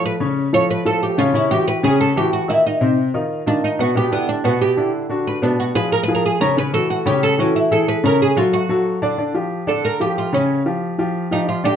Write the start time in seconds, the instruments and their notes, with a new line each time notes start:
Already playing: grand piano F3 F4 A4
0.05 oud B4
0.20 grand piano C#3 C#4 C#5
0.53 grand piano F3 F4 A4, oud C#5
0.70 oud B4
0.85 grand piano F3 F4 A4, oud A4
1.03 oud G4
1.18 grand piano C#3 C#4 C#5, oud F4
1.34 grand piano C#3 C#4 C#5, oud E4
1.51 grand piano E3 E4 F#4, oud G4
1.68 oud B4
1.83 grand piano C#3 C#4 C#5, oud G#4
2.00 oud A4
2.16 grand piano E3 E4 F#4, oud G4
2.33 oud F#4
2.48 grand piano D#3 D#4 F4, oud E4
2.66 oud D#4
2.81 grand piano C3 C4 C5
3.14 grand piano D#3 D#4 F4
3.46 grand piano D#3 D#4 F4, oud D4
3.64 oud D#4
3.79 grand piano B2 B3 B4, oud F#4
3.95 grand piano B2 B3 B4, oud G4
4.11 grand piano D3 D4 E4, oud B3
4.29 oud D4
4.44 grand piano B2 B3 B4, oud F#4
4.61 oud G4
4.77 grand piano D3 D4 E4
5.09 grand piano D3 D4 F#4
5.27 oud B4
5.42 grand piano B2 B3 B4, oud D4
5.60 oud F#4
5.75 grand piano F3 F4 G#4, oud B4
5.92 oud A#4
6.03 oud B4
6.08 grand piano F3 F4 G#4
6.15 oud A#4
6.26 oud G#4
6.40 grand piano C#3 C#4 C#5, oud A#4
6.57 grand piano C#3 C#4 C#5, oud B4
6.73 grand piano E3 E4 F#4, oud A4
6.90 oud F#4
7.06 grand piano C#3 C#4 C#5, oud G4
7.23 oud A4
7.38 grand piano E3 E4 F#4, oud C#4
7.56 oud E4
7.71 grand piano E3 E4 G#4, oud A4
7.88 oud B4
8.04 grand piano C#3 C#4 C#5, oud A#4
8.22 oud G#4
8.36 grand piano F#3 F#4 A4, oud F4
8.53 oud F#4
8.69 grand piano F#3 F#4 A4
9.02 grand piano D3 D4 D5
9.18 grand piano D3 D4 D5
9.34 grand piano F3 F4 G4
9.67 grand piano D3 D4 D5, oud A4
9.85 oud A#4
10.00 grand piano F3 F4 G4, oud G4
10.18 oud F4
10.33 grand piano C#3 C#4 C#5, oud C#4
10.66 grand piano F3 F4 G4
10.98 grand piano F3 F4 G4
11.31 grand piano F3 F4 G4, oud D#4
11.49 oud F4
11.64 grand piano D3 D4 D5, oud G4